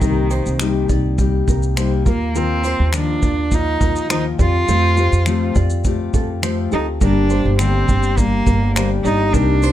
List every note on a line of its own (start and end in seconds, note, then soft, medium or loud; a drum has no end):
0.00 0.42 C2 medium
0.00 0.30 C3 medium
0.00 0.85 D#3 medium
0.00 0.31 G3 medium
0.00 0.31 A#3 medium
0.00 0.30 D#4 medium
0.00 0.29 G4 medium
0.00 0.31 A#4 medium
0.00 kick medium
0.00 shaker medium
0.30 0.59 A#3 soft
0.30 0.60 D#4 soft
0.30 0.59 G4 soft
0.30 0.58 C5 medium
0.30 shaker soft
0.46 0.86 C2 medium
0.46 shaker soft
0.59 0.89 C3 medium
0.59 0.89 G3 medium
0.59 0.89 A#3 medium
0.59 0.88 D#4 medium
0.59 0.87 G4 medium
0.59 finger snap medium
0.59 shaker medium
0.88 1.44 C2 medium
0.88 1.17 A#3 soft
0.88 1.18 D#4 soft
0.88 1.18 G4 medium
0.88 1.30 D5 medium
0.88 kick medium
0.88 shaker soft
1.17 1.75 G3 medium
1.17 1.77 A#3 medium
1.17 1.77 D#4 medium
1.17 1.77 G4 medium
1.17 kick medium
1.17 shaker medium
1.48 2.02 C2 medium
1.48 1.61 A#4 medium
1.48 kick medium
1.48 shaker soft
1.63 shaker soft
1.76 2.05 C3 medium
1.76 2.06 G3 medium
1.76 2.06 A#3 medium
1.76 2.06 D#4 medium
1.76 2.04 G4 medium
1.76 1.91 C5 medium
1.76 finger snap loud
1.76 shaker medium
2.05 2.75 D#2 medium
2.05 2.38 A#3 medium
2.05 2.34 A#3 soft
2.05 2.35 F4 soft
2.05 2.34 A#4 soft
2.05 2.20 A#4 medium
2.05 kick medium
2.05 shaker soft
2.34 2.64 D#3 medium
2.34 2.64 F3 medium
2.34 2.64 A#3 medium
2.34 2.94 C4 medium
2.34 2.64 F4 medium
2.34 2.65 A#4 medium
2.34 2.62 A#4 medium
2.34 shaker medium
2.63 2.93 A#3 soft
2.63 2.93 F4 soft
2.63 2.93 A#4 medium
2.63 2.92 C5 medium
2.63 shaker soft
2.79 3.19 D#2 medium
2.92 3.22 D#3 medium
2.92 3.22 F3 medium
2.92 3.23 A#3 medium
2.92 3.55 D4 medium
2.92 3.22 F4 medium
2.92 3.21 A#4 medium
2.92 finger snap loud
2.92 shaker medium
3.22 3.77 D#2 medium
3.22 3.51 A#3 soft
3.22 3.52 F4 soft
3.22 3.51 A#4 soft
3.22 3.64 D5 medium
3.22 kick medium
3.22 shaker soft
3.51 4.09 F3 medium
3.51 4.09 A#3 medium
3.51 4.10 D#4 loud
3.51 4.11 F4 medium
3.51 4.10 A#4 medium
3.51 kick medium
3.51 shaker medium
3.81 4.35 D#2 medium
3.81 3.95 A#4 medium
3.81 kick medium
3.81 shaker soft
3.96 shaker soft
4.09 4.39 D#3 medium
4.09 4.39 F3 medium
4.09 4.39 A#3 medium
4.09 4.24 D#4 medium
4.09 4.38 F4 medium
4.09 4.38 A#4 medium
4.09 4.24 C5 medium
4.09 finger snap loud
4.09 shaker medium
4.38 4.66 F2 medium
4.38 4.67 C4 soft
4.38 4.68 F4 soft
4.38 5.52 F4 loud
4.38 4.68 G4 medium
4.38 4.53 D5 medium
4.38 kick medium
4.38 shaker soft
4.67 5.09 F2 loud
4.67 4.97 F3 medium
4.67 4.97 A3 medium
4.67 4.97 C4 medium
4.67 4.97 F4 medium
4.67 4.95 G4 medium
4.67 4.96 A4 medium
4.67 shaker medium
4.96 5.26 C4 soft
4.96 5.26 F4 soft
4.96 5.26 G4 soft
4.96 5.25 C5 medium
4.96 shaker soft
5.12 5.52 F2 medium
5.12 shaker soft
5.26 5.55 F3 medium
5.26 5.56 A3 medium
5.26 5.56 C4 medium
5.26 5.55 F4 medium
5.26 5.54 G4 medium
5.26 finger snap medium
5.26 shaker medium
5.55 6.10 F2 medium
5.55 5.84 C4 soft
5.55 5.85 F4 soft
5.55 5.84 G4 medium
5.55 5.97 D5 medium
5.55 kick medium
5.55 shaker soft
5.70 shaker soft
5.84 6.42 A3 medium
5.84 6.42 C4 medium
5.84 6.43 F4 medium
5.84 6.44 G4 medium
5.84 kick medium
5.84 shaker medium
6.14 6.68 F2 medium
6.14 6.28 A4 medium
6.14 kick medium
6.14 shaker soft
6.42 6.72 F3 medium
6.42 6.72 A3 medium
6.42 6.72 C4 medium
6.42 6.72 F4 medium
6.42 6.70 G4 medium
6.42 6.57 C5 medium
6.42 finger snap loud
6.42 shaker medium
6.71 6.99 D2 medium
6.71 7.02 C4 soft
6.71 6.86 D#4 medium
6.71 7.02 F4 soft
6.71 7.01 G4 medium
6.71 6.86 A4 medium
6.71 shaker soft
7.01 7.42 G1 medium
7.01 7.30 G2 medium
7.01 7.30 D3 medium
7.01 7.30 G3 medium
7.01 7.30 A#3 medium
7.01 7.56 D4 medium
7.01 7.29 D4 medium
7.01 7.28 G4 medium
7.01 7.29 A#4 medium
7.01 kick medium
7.01 shaker medium
7.29 7.59 G3 soft
7.29 7.59 A#3 soft
7.29 7.59 D4 soft
7.29 7.59 G4 soft
7.29 7.58 C5 medium
7.29 shaker soft
7.45 7.85 G1 medium
7.59 7.89 G2 medium
7.59 7.89 D3 medium
7.59 7.89 G3 medium
7.59 7.89 A#3 medium
7.59 8.19 C4 medium
7.59 7.88 D4 medium
7.59 7.87 G4 medium
7.59 finger snap medium
7.59 shaker medium
7.88 8.43 G1 medium
7.88 8.16 G3 soft
7.88 8.17 A#3 soft
7.88 8.17 D4 soft
7.88 8.17 G4 soft
7.88 8.30 D5 medium
7.88 kick medium
7.88 shaker soft
8.03 shaker soft
8.17 8.75 G3 soft
8.17 8.75 A#3 medium
8.17 8.76 A#3 medium
8.17 8.76 D4 medium
8.17 8.77 G4 medium
8.17 kick medium
8.17 shaker medium
8.46 9.01 G1 medium
8.46 8.60 A#4 medium
8.46 kick medium
8.46 shaker soft
8.75 9.04 G2 medium
8.75 9.05 D3 medium
8.75 9.05 G3 medium
8.75 8.89 A#3 medium
8.75 9.05 A#3 medium
8.75 9.04 D4 medium
8.75 9.03 G4 medium
8.75 8.90 C5 medium
8.75 finger snap loud
8.75 shaker medium
9.04 9.32 G1 medium
9.04 9.32 G3 soft
9.04 9.33 A#3 soft
9.04 9.34 D4 medium
9.04 9.35 D#4 loud
9.04 9.33 G4 medium
9.04 9.18 D5 medium
9.04 shaker soft
9.33 9.72 C2 loud
9.33 9.62 C3 medium
9.33 9.63 G3 medium
9.33 9.63 A#3 medium
9.33 9.72 D4 medium
9.33 9.62 D#4 medium
9.33 9.60 G4 medium
9.33 9.63 A#4 medium
9.33 kick medium
9.33 shaker medium
9.62 9.72 A#3 soft
9.62 9.72 D#4 soft
9.62 9.72 G4 soft
9.62 9.72 C5 medium
9.62 shaker soft